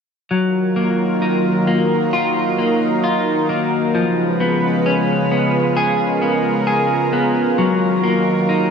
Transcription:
0, 0, Header, 1, 3, 480
1, 0, Start_track
1, 0, Key_signature, -6, "minor"
1, 0, Tempo, 909091
1, 164, Time_signature, 4, 2, 24, 8
1, 4596, End_track
2, 0, Start_track
2, 0, Title_t, "Analog synth pad"
2, 0, Program_c, 0, 89
2, 166, Note_on_c, 0, 51, 70
2, 166, Note_on_c, 0, 54, 56
2, 166, Note_on_c, 0, 70, 68
2, 167, Note_on_c, 0, 65, 58
2, 1116, Note_off_c, 0, 65, 0
2, 1125, Note_on_c, 0, 63, 64
2, 2065, Note_off_c, 0, 54, 0
2, 2066, Note_off_c, 0, 51, 0
2, 2066, Note_off_c, 0, 70, 0
2, 2075, Note_off_c, 0, 63, 0
2, 2087, Note_on_c, 0, 65, 57
2, 2088, Note_on_c, 0, 49, 65
2, 2088, Note_on_c, 0, 56, 59
2, 2089, Note_on_c, 0, 71, 70
2, 3037, Note_off_c, 0, 71, 0
2, 3045, Note_on_c, 0, 70, 82
2, 3987, Note_off_c, 0, 49, 0
2, 3987, Note_off_c, 0, 56, 0
2, 3994, Note_off_c, 0, 70, 0
2, 4003, Note_on_c, 0, 51, 66
2, 4004, Note_on_c, 0, 54, 55
2, 4005, Note_on_c, 0, 70, 77
2, 4596, Note_off_c, 0, 51, 0
2, 4596, Note_off_c, 0, 54, 0
2, 4596, Note_off_c, 0, 65, 0
2, 4596, Note_off_c, 0, 70, 0
2, 4596, End_track
3, 0, Start_track
3, 0, Title_t, "Clean electric guitar"
3, 0, Program_c, 1, 27
3, 162, Note_on_c, 1, 54, 58
3, 402, Note_on_c, 1, 58, 45
3, 643, Note_on_c, 1, 63, 44
3, 877, Note_off_c, 1, 58, 0
3, 883, Note_on_c, 1, 58, 47
3, 1125, Note_on_c, 1, 65, 54
3, 1358, Note_off_c, 1, 58, 0
3, 1364, Note_on_c, 1, 58, 43
3, 1601, Note_off_c, 1, 65, 0
3, 1603, Note_on_c, 1, 65, 47
3, 1837, Note_off_c, 1, 58, 0
3, 1844, Note_on_c, 1, 58, 47
3, 2082, Note_off_c, 1, 54, 0
3, 2084, Note_on_c, 1, 53, 57
3, 2131, Note_off_c, 1, 63, 0
3, 2132, Note_off_c, 1, 58, 0
3, 2325, Note_on_c, 1, 59, 47
3, 2340, Note_off_c, 1, 65, 0
3, 2566, Note_on_c, 1, 61, 55
3, 2800, Note_off_c, 1, 59, 0
3, 2806, Note_on_c, 1, 59, 50
3, 3044, Note_on_c, 1, 68, 59
3, 3276, Note_off_c, 1, 59, 0
3, 3283, Note_on_c, 1, 59, 41
3, 3515, Note_off_c, 1, 68, 0
3, 3522, Note_on_c, 1, 68, 55
3, 3757, Note_off_c, 1, 59, 0
3, 3763, Note_on_c, 1, 59, 50
3, 4001, Note_off_c, 1, 53, 0
3, 4003, Note_on_c, 1, 54, 62
3, 4051, Note_off_c, 1, 59, 0
3, 4051, Note_off_c, 1, 68, 0
3, 4053, Note_off_c, 1, 61, 0
3, 4243, Note_on_c, 1, 58, 47
3, 4482, Note_on_c, 1, 63, 45
3, 4596, Note_off_c, 1, 54, 0
3, 4596, Note_off_c, 1, 58, 0
3, 4596, Note_off_c, 1, 63, 0
3, 4596, End_track
0, 0, End_of_file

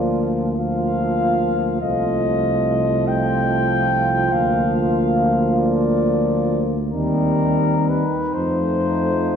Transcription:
0, 0, Header, 1, 6, 480
1, 0, Start_track
1, 0, Key_signature, -2, "major"
1, 0, Tempo, 839161
1, 1042, Time_signature, 6, 3, 24, 8
1, 3448, Tempo, 902256
1, 3928, Tempo, 966184
1, 5135, End_track
2, 0, Start_track
2, 0, Title_t, "Cornet"
2, 0, Program_c, 0, 56
2, 0, Note_on_c, 0, 74, 49
2, 178, Note_off_c, 0, 74, 0
2, 325, Note_on_c, 0, 77, 70
2, 1019, Note_off_c, 0, 77, 0
2, 1038, Note_on_c, 0, 75, 68
2, 1757, Note_on_c, 0, 79, 84
2, 1766, Note_off_c, 0, 75, 0
2, 2472, Note_on_c, 0, 77, 62
2, 2481, Note_off_c, 0, 79, 0
2, 3195, Note_off_c, 0, 77, 0
2, 3199, Note_on_c, 0, 74, 68
2, 3761, Note_off_c, 0, 74, 0
2, 3923, Note_on_c, 0, 70, 66
2, 4403, Note_on_c, 0, 71, 57
2, 4410, Note_off_c, 0, 70, 0
2, 4627, Note_on_c, 0, 72, 75
2, 4634, Note_off_c, 0, 71, 0
2, 5135, Note_off_c, 0, 72, 0
2, 5135, End_track
3, 0, Start_track
3, 0, Title_t, "French horn section"
3, 0, Program_c, 1, 60
3, 0, Note_on_c, 1, 65, 38
3, 306, Note_off_c, 1, 65, 0
3, 321, Note_on_c, 1, 65, 51
3, 1026, Note_off_c, 1, 65, 0
3, 1048, Note_on_c, 1, 65, 44
3, 3839, Note_off_c, 1, 65, 0
3, 3929, Note_on_c, 1, 63, 46
3, 5135, Note_off_c, 1, 63, 0
3, 5135, End_track
4, 0, Start_track
4, 0, Title_t, "Euphonium"
4, 0, Program_c, 2, 58
4, 0, Note_on_c, 2, 58, 46
4, 310, Note_off_c, 2, 58, 0
4, 326, Note_on_c, 2, 58, 47
4, 1029, Note_off_c, 2, 58, 0
4, 1040, Note_on_c, 2, 57, 46
4, 2454, Note_off_c, 2, 57, 0
4, 2477, Note_on_c, 2, 58, 52
4, 3836, Note_off_c, 2, 58, 0
4, 3926, Note_on_c, 2, 60, 47
4, 4477, Note_off_c, 2, 60, 0
4, 4637, Note_on_c, 2, 57, 46
4, 5135, Note_off_c, 2, 57, 0
4, 5135, End_track
5, 0, Start_track
5, 0, Title_t, "Trombone"
5, 0, Program_c, 3, 57
5, 0, Note_on_c, 3, 53, 41
5, 311, Note_off_c, 3, 53, 0
5, 324, Note_on_c, 3, 53, 46
5, 1027, Note_off_c, 3, 53, 0
5, 1042, Note_on_c, 3, 53, 49
5, 3836, Note_off_c, 3, 53, 0
5, 3926, Note_on_c, 3, 55, 44
5, 4477, Note_off_c, 3, 55, 0
5, 4644, Note_on_c, 3, 53, 44
5, 5135, Note_off_c, 3, 53, 0
5, 5135, End_track
6, 0, Start_track
6, 0, Title_t, "Tuba"
6, 0, Program_c, 4, 58
6, 0, Note_on_c, 4, 38, 46
6, 1020, Note_off_c, 4, 38, 0
6, 1044, Note_on_c, 4, 36, 50
6, 2456, Note_off_c, 4, 36, 0
6, 2477, Note_on_c, 4, 38, 56
6, 3927, Note_on_c, 4, 39, 55
6, 3934, Note_off_c, 4, 38, 0
6, 4488, Note_off_c, 4, 39, 0
6, 4636, Note_on_c, 4, 41, 51
6, 5135, Note_off_c, 4, 41, 0
6, 5135, End_track
0, 0, End_of_file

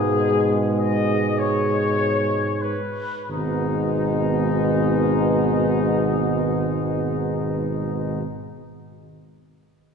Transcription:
0, 0, Header, 1, 6, 480
1, 0, Start_track
1, 0, Key_signature, 5, "minor"
1, 0, Tempo, 500000
1, 9549, End_track
2, 0, Start_track
2, 0, Title_t, "Trumpet section"
2, 0, Program_c, 0, 61
2, 0, Note_on_c, 0, 68, 53
2, 584, Note_off_c, 0, 68, 0
2, 747, Note_on_c, 0, 75, 63
2, 1298, Note_off_c, 0, 75, 0
2, 1318, Note_on_c, 0, 73, 64
2, 2510, Note_on_c, 0, 71, 45
2, 2523, Note_off_c, 0, 73, 0
2, 3154, Note_off_c, 0, 71, 0
2, 3172, Note_on_c, 0, 63, 49
2, 7914, Note_off_c, 0, 63, 0
2, 9549, End_track
3, 0, Start_track
3, 0, Title_t, "French horn section"
3, 0, Program_c, 1, 60
3, 0, Note_on_c, 1, 68, 55
3, 2663, Note_off_c, 1, 68, 0
3, 3176, Note_on_c, 1, 59, 57
3, 7917, Note_off_c, 1, 59, 0
3, 9549, End_track
4, 0, Start_track
4, 0, Title_t, "Euphonium"
4, 0, Program_c, 2, 58
4, 0, Note_on_c, 2, 56, 54
4, 2513, Note_off_c, 2, 56, 0
4, 3159, Note_on_c, 2, 56, 59
4, 7901, Note_off_c, 2, 56, 0
4, 9549, End_track
5, 0, Start_track
5, 0, Title_t, "Trombone"
5, 0, Program_c, 3, 57
5, 0, Note_on_c, 3, 47, 55
5, 2527, Note_off_c, 3, 47, 0
5, 3166, Note_on_c, 3, 47, 53
5, 7907, Note_off_c, 3, 47, 0
5, 9549, End_track
6, 0, Start_track
6, 0, Title_t, "Tuba"
6, 0, Program_c, 4, 58
6, 0, Note_on_c, 4, 44, 56
6, 2657, Note_off_c, 4, 44, 0
6, 3157, Note_on_c, 4, 32, 62
6, 7898, Note_off_c, 4, 32, 0
6, 9549, End_track
0, 0, End_of_file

